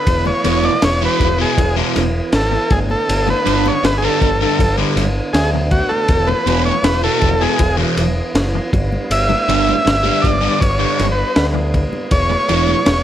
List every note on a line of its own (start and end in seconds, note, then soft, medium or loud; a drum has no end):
0.00 0.25 B4 medium
0.06 0.30 E1 medium
0.06 2.69 E3 medium
0.06 13.03 B3 medium
0.06 2.69 E4 medium
0.06 13.03 B4 medium
0.06 kick loud
0.06 ride medium
0.26 0.66 C#5 medium
0.26 muted distorted electric guitar stroke soft
0.26 high conga medium
0.44 0.68 E1 medium
0.44 0.69 E2 medium
0.44 0.69 B2 medium
0.44 0.70 E3 medium
0.44 ride medium
0.44 low conga medium
0.63 0.84 D5 loud
0.63 high conga medium
0.82 1.06 E1 medium
0.82 1.03 C#5 loud
0.82 muted distorted electric guitar stroke soft
0.82 snare loud
0.82 ride loud
1.01 1.27 E2 medium
1.01 1.26 B2 medium
1.01 1.26 E3 medium
1.01 1.39 B4 medium
1.20 1.44 E1 medium
1.20 kick medium
1.20 ride medium
1.20 low conga medium
1.38 1.56 E2 medium
1.38 1.57 B2 medium
1.38 1.57 E3 medium
1.38 1.75 G#4 medium
1.57 1.81 E1 medium
1.57 muted distorted electric guitar stroke soft
1.57 kick medium
1.57 ride medium
1.76 2.02 E2 medium
1.76 2.01 B2 medium
1.76 2.01 E3 medium
1.96 2.20 E1 medium
1.96 snare soft
1.96 ride medium
1.96 low conga medium
2.32 2.56 G#1 medium
2.32 2.73 A4 medium
2.32 snare loud
2.32 ride medium
2.52 muted distorted electric guitar stroke soft
2.70 2.94 G1 medium
2.70 6.07 D3 medium
2.70 6.07 D4 medium
2.70 2.80 G#4 medium
2.70 kick loud
2.70 ride medium
2.70 high conga medium
2.70 low conga medium
2.90 3.29 A4 medium
2.90 high conga medium
3.09 3.32 G1 medium
3.09 ride medium
3.27 3.68 B4 medium
3.27 muted distorted electric guitar stroke soft
3.27 high conga medium
3.45 3.70 G1 medium
3.45 3.70 G2 medium
3.45 3.71 D3 medium
3.45 3.71 G3 loud
3.45 ride medium
3.45 low conga medium
3.66 3.84 C#5 medium
3.66 high conga medium
3.83 4.07 G1 medium
3.83 3.97 B4 loud
3.83 muted distorted electric guitar stroke soft
3.83 snare loud
3.83 ride medium
3.98 4.04 G#4 medium
4.02 4.28 G2 medium
4.02 4.28 D3 medium
4.02 4.27 G3 medium
4.02 4.41 A4 medium
4.21 4.45 G1 medium
4.21 kick medium
4.21 ride medium
4.21 low conga medium
4.41 4.58 G2 medium
4.41 4.59 D3 medium
4.41 4.59 G3 medium
4.41 4.76 A4 medium
4.59 4.82 G1 medium
4.59 muted distorted electric guitar stroke soft
4.59 kick medium
4.59 ride medium
4.78 5.03 G2 medium
4.78 5.03 D3 medium
4.78 5.02 G3 medium
4.96 5.19 G1 medium
4.96 snare soft
4.96 ride medium
4.96 low conga medium
5.33 5.80 D2 medium
5.33 5.50 G#4 medium
5.33 snare loud
5.33 ride medium
5.54 muted distorted electric guitar stroke soft
5.71 5.91 F#4 medium
5.71 kick medium
5.71 ride medium
5.71 high conga medium
5.71 low conga medium
5.89 6.29 A4 medium
5.89 high conga medium
6.08 6.32 E1 medium
6.08 8.71 E3 medium
6.08 8.71 E4 medium
6.08 kick loud
6.08 ride medium
6.27 6.63 B4 medium
6.27 muted distorted electric guitar stroke soft
6.27 high conga soft
6.46 6.70 E1 medium
6.46 6.71 E2 medium
6.46 6.71 B2 medium
6.46 6.72 E3 loud
6.46 ride medium
6.46 low conga medium
6.65 6.85 C#5 medium
6.65 high conga medium
6.83 7.07 E1 medium
6.83 7.02 B4 medium
6.83 muted distorted electric guitar stroke soft
6.83 snare loud
6.83 ride loud
7.03 7.29 E2 medium
7.03 7.28 B2 medium
7.03 7.28 E3 medium
7.03 7.43 A4 medium
7.21 7.46 E1 medium
7.21 kick medium
7.21 ride medium
7.21 low conga medium
7.41 7.58 E2 medium
7.41 7.59 B2 medium
7.41 7.59 E3 medium
7.41 7.76 G#4 medium
7.59 7.83 E1 medium
7.59 muted distorted electric guitar stroke medium
7.59 kick medium
7.59 ride medium
7.77 8.03 E2 medium
7.77 8.03 B2 medium
7.77 8.02 E3 medium
7.97 8.21 E1 medium
7.97 ride medium
7.97 low conga medium
8.34 8.58 F#1 medium
8.34 snare loud
8.34 ride medium
8.54 muted distorted electric guitar stroke soft
8.73 8.96 G1 medium
8.73 12.09 G3 medium
8.73 12.09 D4 medium
8.73 kick loud
8.73 ride medium
8.73 high conga medium
8.73 low conga medium
8.92 high conga medium
9.10 9.34 G1 medium
9.10 10.27 E5 loud
9.10 ride loud
9.29 muted distorted electric guitar stroke soft
9.29 high conga medium
9.48 9.72 G1 medium
9.48 9.73 G2 medium
9.48 9.73 D3 medium
9.48 9.73 G3 medium
9.48 ride medium
9.48 low conga medium
9.69 high conga medium
9.85 10.09 G1 medium
9.85 muted distorted electric guitar stroke soft
9.85 snare loud
9.85 ride medium
10.03 10.30 G2 medium
10.03 10.29 D3 medium
10.03 10.29 G3 medium
10.03 high conga medium
10.22 10.47 G1 medium
10.22 10.61 D5 medium
10.22 kick medium
10.22 ride medium
10.22 low conga medium
10.41 10.58 G2 medium
10.41 10.59 D3 medium
10.41 10.59 G3 medium
10.59 10.85 G1 medium
10.59 11.07 C#5 medium
10.59 muted distorted electric guitar stroke soft
10.59 kick medium
10.59 ride medium
10.79 11.05 G2 medium
10.79 11.04 D3 medium
10.79 11.04 G3 medium
10.99 11.23 G1 medium
10.99 snare soft
10.99 ride medium
10.99 low conga medium
11.12 11.47 B4 medium
11.36 11.83 D2 medium
11.36 snare loud
11.36 ride medium
11.54 muted distorted electric guitar stroke soft
11.74 kick medium
11.74 ride medium
11.74 high conga medium
11.74 low conga medium
11.93 high conga medium
12.11 12.35 E1 medium
12.11 13.03 G#3 medium
12.11 13.03 E4 medium
12.11 13.03 C#5 loud
12.11 kick loud
12.11 ride medium
12.29 muted distorted electric guitar stroke medium
12.29 high conga medium
12.48 12.73 E1 medium
12.48 12.73 E2 medium
12.48 12.73 B2 medium
12.48 12.74 E3 loud
12.48 ride medium
12.48 low conga medium
12.68 high conga medium
12.85 13.03 E1 medium
12.85 muted distorted electric guitar stroke soft
12.85 snare loud
12.85 ride loud